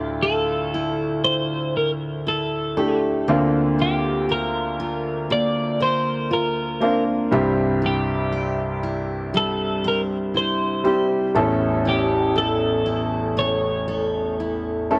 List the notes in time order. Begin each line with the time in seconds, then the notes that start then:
Already playing: D2 A2 D3 A3 D4 E4 F4
0.23 A4
0.74 E4
1.25 C5
1.77 A#4
2.27 E4 A4
2.77 A3 D4 E4 G4 A4
3.28 D2 D3 A#3 C4 D4 F4
3.79 F4 G4
4.29 A#4
4.80 F4
5.30 A#3 D5
5.80 A#4 C5
6.31 F4 A#4
6.80 A#3 C4 D4 F4 A#4
7.31 C2 G2 C3 G3 C4 E4 G4
7.82 E4
7.86 G4
8.33 C5
8.83 E4
9.34 G3 A4
9.84 A#4 C5
10.34 E4 C5
10.84 G3 C4 E4 G4 C5
11.34 A1 E2 A2 A3 C#4 E4 A4
11.85 E4 G4
12.35 A4
12.86 E4
13.37 A3 C#5
13.88 A4
14.40 E4
14.91 A3 C#4 E4 A4